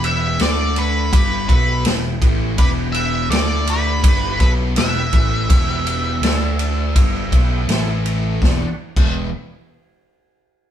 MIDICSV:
0, 0, Header, 1, 7, 480
1, 0, Start_track
1, 0, Key_signature, 1, "minor"
1, 0, Tempo, 729040
1, 1703, Time_signature, 4, 2, 24, 8
1, 7050, End_track
2, 0, Start_track
2, 0, Title_t, "Lead electric guitar"
2, 0, Program_c, 0, 29
2, 30, Note_on_c, 0, 76, 105
2, 273, Note_off_c, 0, 76, 0
2, 275, Note_on_c, 0, 74, 96
2, 517, Note_off_c, 0, 74, 0
2, 518, Note_on_c, 0, 71, 77
2, 739, Note_off_c, 0, 71, 0
2, 747, Note_on_c, 0, 71, 92
2, 972, Note_off_c, 0, 71, 0
2, 980, Note_on_c, 0, 71, 68
2, 1205, Note_off_c, 0, 71, 0
2, 1706, Note_on_c, 0, 71, 96
2, 1770, Note_off_c, 0, 71, 0
2, 1926, Note_on_c, 0, 76, 96
2, 2157, Note_off_c, 0, 76, 0
2, 2177, Note_on_c, 0, 74, 92
2, 2427, Note_off_c, 0, 74, 0
2, 2435, Note_on_c, 0, 71, 85
2, 2890, Note_off_c, 0, 71, 0
2, 2898, Note_on_c, 0, 71, 86
2, 2963, Note_off_c, 0, 71, 0
2, 3147, Note_on_c, 0, 76, 95
2, 5037, Note_off_c, 0, 76, 0
2, 7050, End_track
3, 0, Start_track
3, 0, Title_t, "Lead electric guitar"
3, 0, Program_c, 1, 29
3, 27, Note_on_c, 1, 71, 77
3, 249, Note_off_c, 1, 71, 0
3, 263, Note_on_c, 1, 69, 83
3, 487, Note_off_c, 1, 69, 0
3, 512, Note_on_c, 1, 69, 64
3, 732, Note_off_c, 1, 69, 0
3, 746, Note_on_c, 1, 67, 71
3, 969, Note_off_c, 1, 67, 0
3, 991, Note_on_c, 1, 69, 57
3, 1211, Note_off_c, 1, 69, 0
3, 1705, Note_on_c, 1, 67, 72
3, 1770, Note_off_c, 1, 67, 0
3, 1940, Note_on_c, 1, 71, 77
3, 2164, Note_off_c, 1, 71, 0
3, 2176, Note_on_c, 1, 69, 85
3, 2402, Note_off_c, 1, 69, 0
3, 2414, Note_on_c, 1, 67, 77
3, 2871, Note_off_c, 1, 67, 0
3, 2898, Note_on_c, 1, 69, 74
3, 2963, Note_off_c, 1, 69, 0
3, 3142, Note_on_c, 1, 71, 82
3, 5035, Note_off_c, 1, 71, 0
3, 7050, End_track
4, 0, Start_track
4, 0, Title_t, "Tonewheel organ"
4, 0, Program_c, 2, 16
4, 23, Note_on_c, 2, 59, 89
4, 25, Note_on_c, 2, 64, 94
4, 30, Note_on_c, 2, 67, 106
4, 218, Note_off_c, 2, 59, 0
4, 219, Note_off_c, 2, 64, 0
4, 221, Note_off_c, 2, 67, 0
4, 267, Note_on_c, 2, 57, 70
4, 271, Note_on_c, 2, 69, 76
4, 275, Note_on_c, 2, 62, 69
4, 459, Note_off_c, 2, 57, 0
4, 461, Note_off_c, 2, 69, 0
4, 463, Note_off_c, 2, 62, 0
4, 503, Note_on_c, 2, 57, 66
4, 506, Note_on_c, 2, 71, 78
4, 507, Note_on_c, 2, 62, 62
4, 697, Note_off_c, 2, 57, 0
4, 698, Note_off_c, 2, 71, 0
4, 699, Note_off_c, 2, 62, 0
4, 749, Note_on_c, 2, 59, 69
4, 751, Note_on_c, 2, 64, 68
4, 755, Note_on_c, 2, 67, 80
4, 940, Note_off_c, 2, 59, 0
4, 941, Note_off_c, 2, 64, 0
4, 943, Note_off_c, 2, 67, 0
4, 975, Note_on_c, 2, 67, 70
4, 978, Note_on_c, 2, 59, 65
4, 980, Note_on_c, 2, 64, 57
4, 1173, Note_off_c, 2, 67, 0
4, 1174, Note_off_c, 2, 59, 0
4, 1175, Note_off_c, 2, 64, 0
4, 1219, Note_on_c, 2, 59, 95
4, 1223, Note_on_c, 2, 64, 81
4, 1227, Note_on_c, 2, 67, 109
4, 1414, Note_off_c, 2, 59, 0
4, 1417, Note_off_c, 2, 64, 0
4, 1419, Note_off_c, 2, 67, 0
4, 1459, Note_on_c, 2, 59, 82
4, 1459, Note_on_c, 2, 67, 94
4, 1465, Note_on_c, 2, 64, 70
4, 1654, Note_off_c, 2, 59, 0
4, 1655, Note_off_c, 2, 67, 0
4, 1658, Note_off_c, 2, 64, 0
4, 1707, Note_on_c, 2, 59, 84
4, 1707, Note_on_c, 2, 64, 86
4, 1707, Note_on_c, 2, 67, 99
4, 1898, Note_off_c, 2, 59, 0
4, 1898, Note_off_c, 2, 64, 0
4, 1898, Note_off_c, 2, 67, 0
4, 1926, Note_on_c, 2, 59, 94
4, 1932, Note_on_c, 2, 64, 88
4, 1933, Note_on_c, 2, 67, 112
4, 2128, Note_off_c, 2, 59, 0
4, 2131, Note_off_c, 2, 64, 0
4, 2131, Note_off_c, 2, 67, 0
4, 2165, Note_on_c, 2, 57, 77
4, 2170, Note_on_c, 2, 62, 62
4, 2173, Note_on_c, 2, 69, 85
4, 2367, Note_off_c, 2, 57, 0
4, 2369, Note_off_c, 2, 62, 0
4, 2371, Note_off_c, 2, 69, 0
4, 2407, Note_on_c, 2, 69, 71
4, 2409, Note_on_c, 2, 57, 67
4, 2410, Note_on_c, 2, 62, 60
4, 2608, Note_off_c, 2, 69, 0
4, 2609, Note_off_c, 2, 57, 0
4, 2609, Note_off_c, 2, 62, 0
4, 2658, Note_on_c, 2, 59, 70
4, 2658, Note_on_c, 2, 64, 71
4, 2661, Note_on_c, 2, 67, 88
4, 2853, Note_off_c, 2, 59, 0
4, 2853, Note_off_c, 2, 64, 0
4, 2855, Note_off_c, 2, 67, 0
4, 2893, Note_on_c, 2, 59, 66
4, 2896, Note_on_c, 2, 67, 72
4, 2901, Note_on_c, 2, 64, 60
4, 3091, Note_off_c, 2, 59, 0
4, 3092, Note_off_c, 2, 67, 0
4, 3095, Note_off_c, 2, 64, 0
4, 3131, Note_on_c, 2, 59, 99
4, 3136, Note_on_c, 2, 67, 111
4, 3137, Note_on_c, 2, 64, 88
4, 3330, Note_off_c, 2, 59, 0
4, 3332, Note_off_c, 2, 67, 0
4, 3333, Note_off_c, 2, 64, 0
4, 3375, Note_on_c, 2, 64, 68
4, 3376, Note_on_c, 2, 67, 74
4, 3380, Note_on_c, 2, 59, 70
4, 3572, Note_off_c, 2, 64, 0
4, 3572, Note_off_c, 2, 67, 0
4, 3574, Note_off_c, 2, 59, 0
4, 3620, Note_on_c, 2, 64, 81
4, 3625, Note_on_c, 2, 67, 104
4, 3626, Note_on_c, 2, 59, 87
4, 3814, Note_off_c, 2, 64, 0
4, 3817, Note_off_c, 2, 59, 0
4, 3817, Note_off_c, 2, 67, 0
4, 3859, Note_on_c, 2, 67, 127
4, 3863, Note_on_c, 2, 59, 113
4, 3863, Note_on_c, 2, 64, 97
4, 4053, Note_off_c, 2, 67, 0
4, 4055, Note_off_c, 2, 64, 0
4, 4056, Note_off_c, 2, 59, 0
4, 4103, Note_on_c, 2, 69, 100
4, 4104, Note_on_c, 2, 62, 80
4, 4107, Note_on_c, 2, 57, 90
4, 4295, Note_off_c, 2, 69, 0
4, 4296, Note_off_c, 2, 62, 0
4, 4298, Note_off_c, 2, 57, 0
4, 4341, Note_on_c, 2, 57, 79
4, 4345, Note_on_c, 2, 62, 73
4, 4346, Note_on_c, 2, 69, 84
4, 4534, Note_off_c, 2, 57, 0
4, 4536, Note_off_c, 2, 62, 0
4, 4537, Note_off_c, 2, 69, 0
4, 4585, Note_on_c, 2, 59, 92
4, 4588, Note_on_c, 2, 64, 80
4, 4589, Note_on_c, 2, 67, 93
4, 4776, Note_off_c, 2, 59, 0
4, 4778, Note_off_c, 2, 64, 0
4, 4778, Note_off_c, 2, 67, 0
4, 4818, Note_on_c, 2, 59, 78
4, 4822, Note_on_c, 2, 67, 90
4, 4825, Note_on_c, 2, 64, 69
4, 5013, Note_off_c, 2, 59, 0
4, 5015, Note_off_c, 2, 67, 0
4, 5016, Note_off_c, 2, 64, 0
4, 5054, Note_on_c, 2, 64, 110
4, 5056, Note_on_c, 2, 57, 114
4, 5057, Note_on_c, 2, 69, 126
4, 5251, Note_off_c, 2, 64, 0
4, 5252, Note_off_c, 2, 57, 0
4, 5253, Note_off_c, 2, 69, 0
4, 5301, Note_on_c, 2, 64, 82
4, 5304, Note_on_c, 2, 57, 78
4, 5305, Note_on_c, 2, 69, 88
4, 5495, Note_off_c, 2, 64, 0
4, 5496, Note_off_c, 2, 57, 0
4, 5496, Note_off_c, 2, 69, 0
4, 5546, Note_on_c, 2, 55, 77
4, 5547, Note_on_c, 2, 62, 64
4, 5548, Note_on_c, 2, 66, 76
4, 5767, Note_off_c, 2, 55, 0
4, 5767, Note_off_c, 2, 62, 0
4, 5768, Note_off_c, 2, 66, 0
4, 7050, End_track
5, 0, Start_track
5, 0, Title_t, "Distorted electric guitar"
5, 0, Program_c, 3, 30
5, 0, Note_on_c, 3, 40, 94
5, 0, Note_on_c, 3, 47, 84
5, 0, Note_on_c, 3, 52, 90
5, 255, Note_off_c, 3, 40, 0
5, 256, Note_off_c, 3, 47, 0
5, 258, Note_off_c, 3, 52, 0
5, 263, Note_on_c, 3, 50, 89
5, 266, Note_on_c, 3, 57, 98
5, 267, Note_on_c, 3, 62, 111
5, 733, Note_off_c, 3, 50, 0
5, 738, Note_off_c, 3, 57, 0
5, 738, Note_on_c, 3, 43, 86
5, 739, Note_off_c, 3, 62, 0
5, 741, Note_on_c, 3, 50, 88
5, 745, Note_on_c, 3, 55, 90
5, 967, Note_off_c, 3, 50, 0
5, 970, Note_on_c, 3, 47, 97
5, 974, Note_off_c, 3, 43, 0
5, 974, Note_off_c, 3, 55, 0
5, 976, Note_on_c, 3, 54, 85
5, 980, Note_on_c, 3, 59, 83
5, 1210, Note_off_c, 3, 47, 0
5, 1213, Note_off_c, 3, 54, 0
5, 1215, Note_off_c, 3, 59, 0
5, 1219, Note_on_c, 3, 40, 65
5, 1221, Note_on_c, 3, 47, 64
5, 1413, Note_off_c, 3, 40, 0
5, 1414, Note_off_c, 3, 47, 0
5, 1461, Note_on_c, 3, 45, 84
5, 1461, Note_on_c, 3, 52, 84
5, 1465, Note_on_c, 3, 57, 91
5, 1683, Note_off_c, 3, 52, 0
5, 1687, Note_on_c, 3, 40, 86
5, 1689, Note_off_c, 3, 45, 0
5, 1691, Note_on_c, 3, 47, 96
5, 1691, Note_on_c, 3, 52, 96
5, 1697, Note_off_c, 3, 57, 0
5, 2168, Note_off_c, 3, 40, 0
5, 2169, Note_off_c, 3, 47, 0
5, 2169, Note_off_c, 3, 52, 0
5, 2178, Note_on_c, 3, 50, 102
5, 2185, Note_on_c, 3, 57, 100
5, 2187, Note_on_c, 3, 62, 104
5, 2647, Note_off_c, 3, 50, 0
5, 2651, Note_on_c, 3, 43, 91
5, 2653, Note_off_c, 3, 57, 0
5, 2655, Note_on_c, 3, 50, 98
5, 2656, Note_on_c, 3, 55, 96
5, 2657, Note_off_c, 3, 62, 0
5, 2889, Note_off_c, 3, 43, 0
5, 2891, Note_off_c, 3, 50, 0
5, 2892, Note_off_c, 3, 55, 0
5, 2894, Note_on_c, 3, 47, 87
5, 2896, Note_on_c, 3, 54, 93
5, 2896, Note_on_c, 3, 59, 103
5, 3126, Note_off_c, 3, 47, 0
5, 3131, Note_off_c, 3, 59, 0
5, 3132, Note_off_c, 3, 54, 0
5, 3134, Note_on_c, 3, 47, 74
5, 3135, Note_on_c, 3, 40, 60
5, 3330, Note_off_c, 3, 40, 0
5, 3330, Note_off_c, 3, 47, 0
5, 3375, Note_on_c, 3, 45, 76
5, 3378, Note_on_c, 3, 52, 94
5, 3379, Note_on_c, 3, 57, 89
5, 3611, Note_off_c, 3, 45, 0
5, 3613, Note_off_c, 3, 52, 0
5, 3613, Note_off_c, 3, 57, 0
5, 3618, Note_on_c, 3, 40, 76
5, 3619, Note_on_c, 3, 47, 81
5, 3620, Note_on_c, 3, 52, 86
5, 4092, Note_off_c, 3, 40, 0
5, 4093, Note_off_c, 3, 47, 0
5, 4093, Note_off_c, 3, 52, 0
5, 4101, Note_on_c, 3, 50, 90
5, 4101, Note_on_c, 3, 57, 101
5, 4107, Note_on_c, 3, 62, 122
5, 4574, Note_off_c, 3, 50, 0
5, 4574, Note_off_c, 3, 57, 0
5, 4577, Note_off_c, 3, 62, 0
5, 4582, Note_on_c, 3, 43, 92
5, 4584, Note_on_c, 3, 50, 91
5, 4586, Note_on_c, 3, 55, 94
5, 4814, Note_off_c, 3, 43, 0
5, 4815, Note_off_c, 3, 50, 0
5, 4816, Note_off_c, 3, 55, 0
5, 4826, Note_on_c, 3, 47, 78
5, 4832, Note_on_c, 3, 54, 86
5, 4833, Note_on_c, 3, 59, 95
5, 5056, Note_off_c, 3, 47, 0
5, 5059, Note_off_c, 3, 54, 0
5, 5060, Note_off_c, 3, 59, 0
5, 5067, Note_on_c, 3, 45, 80
5, 5069, Note_on_c, 3, 52, 98
5, 5074, Note_on_c, 3, 57, 92
5, 5537, Note_off_c, 3, 45, 0
5, 5538, Note_off_c, 3, 52, 0
5, 5540, Note_off_c, 3, 57, 0
5, 5540, Note_on_c, 3, 40, 77
5, 5547, Note_on_c, 3, 47, 91
5, 5552, Note_on_c, 3, 52, 84
5, 5685, Note_off_c, 3, 40, 0
5, 5688, Note_off_c, 3, 47, 0
5, 5691, Note_off_c, 3, 52, 0
5, 5906, Note_on_c, 3, 40, 96
5, 5912, Note_on_c, 3, 47, 105
5, 5915, Note_on_c, 3, 52, 100
5, 6096, Note_off_c, 3, 40, 0
5, 6099, Note_off_c, 3, 47, 0
5, 6100, Note_off_c, 3, 52, 0
5, 7050, End_track
6, 0, Start_track
6, 0, Title_t, "Picked electric bass"
6, 0, Program_c, 4, 34
6, 0, Note_on_c, 4, 28, 94
6, 237, Note_off_c, 4, 28, 0
6, 261, Note_on_c, 4, 38, 89
6, 716, Note_off_c, 4, 38, 0
6, 742, Note_on_c, 4, 31, 91
6, 966, Note_off_c, 4, 31, 0
6, 980, Note_on_c, 4, 35, 92
6, 1205, Note_off_c, 4, 35, 0
6, 1215, Note_on_c, 4, 28, 77
6, 1442, Note_off_c, 4, 28, 0
6, 1458, Note_on_c, 4, 33, 90
6, 1684, Note_off_c, 4, 33, 0
6, 1699, Note_on_c, 4, 28, 95
6, 2154, Note_off_c, 4, 28, 0
6, 2174, Note_on_c, 4, 38, 92
6, 2632, Note_off_c, 4, 38, 0
6, 2658, Note_on_c, 4, 31, 101
6, 2883, Note_off_c, 4, 31, 0
6, 2896, Note_on_c, 4, 35, 95
6, 3122, Note_off_c, 4, 35, 0
6, 3143, Note_on_c, 4, 28, 78
6, 3366, Note_off_c, 4, 28, 0
6, 3378, Note_on_c, 4, 33, 95
6, 3603, Note_off_c, 4, 33, 0
6, 3621, Note_on_c, 4, 28, 94
6, 4074, Note_off_c, 4, 28, 0
6, 4095, Note_on_c, 4, 38, 90
6, 4552, Note_off_c, 4, 38, 0
6, 4580, Note_on_c, 4, 31, 96
6, 4804, Note_off_c, 4, 31, 0
6, 4821, Note_on_c, 4, 35, 82
6, 5044, Note_off_c, 4, 35, 0
6, 5052, Note_on_c, 4, 33, 76
6, 5510, Note_off_c, 4, 33, 0
6, 5540, Note_on_c, 4, 28, 91
6, 5675, Note_off_c, 4, 28, 0
6, 5901, Note_on_c, 4, 28, 93
6, 6125, Note_off_c, 4, 28, 0
6, 7050, End_track
7, 0, Start_track
7, 0, Title_t, "Drums"
7, 24, Note_on_c, 9, 51, 73
7, 90, Note_off_c, 9, 51, 0
7, 260, Note_on_c, 9, 51, 80
7, 270, Note_on_c, 9, 38, 105
7, 326, Note_off_c, 9, 51, 0
7, 336, Note_off_c, 9, 38, 0
7, 501, Note_on_c, 9, 51, 70
7, 567, Note_off_c, 9, 51, 0
7, 743, Note_on_c, 9, 36, 116
7, 744, Note_on_c, 9, 51, 102
7, 809, Note_off_c, 9, 36, 0
7, 810, Note_off_c, 9, 51, 0
7, 981, Note_on_c, 9, 36, 101
7, 984, Note_on_c, 9, 51, 62
7, 1047, Note_off_c, 9, 36, 0
7, 1049, Note_off_c, 9, 51, 0
7, 1216, Note_on_c, 9, 51, 86
7, 1226, Note_on_c, 9, 38, 110
7, 1282, Note_off_c, 9, 51, 0
7, 1292, Note_off_c, 9, 38, 0
7, 1459, Note_on_c, 9, 36, 101
7, 1460, Note_on_c, 9, 51, 71
7, 1525, Note_off_c, 9, 36, 0
7, 1526, Note_off_c, 9, 51, 0
7, 1699, Note_on_c, 9, 51, 86
7, 1700, Note_on_c, 9, 36, 105
7, 1765, Note_off_c, 9, 36, 0
7, 1765, Note_off_c, 9, 51, 0
7, 1938, Note_on_c, 9, 51, 70
7, 2004, Note_off_c, 9, 51, 0
7, 2183, Note_on_c, 9, 51, 92
7, 2193, Note_on_c, 9, 38, 108
7, 2249, Note_off_c, 9, 51, 0
7, 2259, Note_off_c, 9, 38, 0
7, 2419, Note_on_c, 9, 51, 77
7, 2484, Note_off_c, 9, 51, 0
7, 2658, Note_on_c, 9, 36, 117
7, 2658, Note_on_c, 9, 51, 118
7, 2724, Note_off_c, 9, 36, 0
7, 2724, Note_off_c, 9, 51, 0
7, 2896, Note_on_c, 9, 51, 66
7, 2898, Note_on_c, 9, 36, 93
7, 2962, Note_off_c, 9, 51, 0
7, 2964, Note_off_c, 9, 36, 0
7, 3134, Note_on_c, 9, 51, 87
7, 3144, Note_on_c, 9, 38, 108
7, 3200, Note_off_c, 9, 51, 0
7, 3210, Note_off_c, 9, 38, 0
7, 3375, Note_on_c, 9, 51, 67
7, 3379, Note_on_c, 9, 36, 96
7, 3440, Note_off_c, 9, 51, 0
7, 3445, Note_off_c, 9, 36, 0
7, 3620, Note_on_c, 9, 36, 110
7, 3620, Note_on_c, 9, 51, 98
7, 3685, Note_off_c, 9, 36, 0
7, 3686, Note_off_c, 9, 51, 0
7, 3862, Note_on_c, 9, 51, 74
7, 3928, Note_off_c, 9, 51, 0
7, 4101, Note_on_c, 9, 51, 91
7, 4111, Note_on_c, 9, 38, 105
7, 4167, Note_off_c, 9, 51, 0
7, 4177, Note_off_c, 9, 38, 0
7, 4339, Note_on_c, 9, 51, 71
7, 4405, Note_off_c, 9, 51, 0
7, 4581, Note_on_c, 9, 36, 113
7, 4581, Note_on_c, 9, 51, 104
7, 4646, Note_off_c, 9, 51, 0
7, 4647, Note_off_c, 9, 36, 0
7, 4822, Note_on_c, 9, 36, 93
7, 4822, Note_on_c, 9, 51, 67
7, 4887, Note_off_c, 9, 36, 0
7, 4888, Note_off_c, 9, 51, 0
7, 5061, Note_on_c, 9, 51, 81
7, 5071, Note_on_c, 9, 38, 93
7, 5127, Note_off_c, 9, 51, 0
7, 5137, Note_off_c, 9, 38, 0
7, 5304, Note_on_c, 9, 51, 60
7, 5370, Note_off_c, 9, 51, 0
7, 5542, Note_on_c, 9, 36, 96
7, 5552, Note_on_c, 9, 38, 85
7, 5608, Note_off_c, 9, 36, 0
7, 5618, Note_off_c, 9, 38, 0
7, 5902, Note_on_c, 9, 36, 105
7, 5904, Note_on_c, 9, 49, 81
7, 5968, Note_off_c, 9, 36, 0
7, 5970, Note_off_c, 9, 49, 0
7, 7050, End_track
0, 0, End_of_file